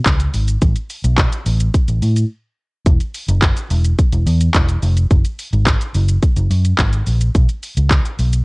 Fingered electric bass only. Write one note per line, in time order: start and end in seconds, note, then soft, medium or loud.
0.06 0.27 C#2 medium
0.34 0.55 G#1 medium
0.62 0.73 A1 loud
1.04 1.26 B1 loud
1.46 1.68 A1 loud
1.88 1.99 A1 loud
2.02 2.24 A2 loud
2.86 2.97 E1 loud
3.28 3.50 F#1 medium
3.70 3.92 E1 loud
4.12 4.23 E1 loud
4.26 4.48 E2 loud
4.54 4.76 E1 loud
4.83 5.04 F1 loud
5.11 5.21 F#1 loud
5.53 5.74 G#1 loud
5.95 6.16 F#1 loud
6.37 6.47 F#1 loud
6.51 6.72 F#2 loud
6.79 7.00 G#1 loud
7.07 7.28 A#1 loud
7.35 7.46 B1 loud
7.77 7.98 C#2 medium
8.19 8.41 B1 loud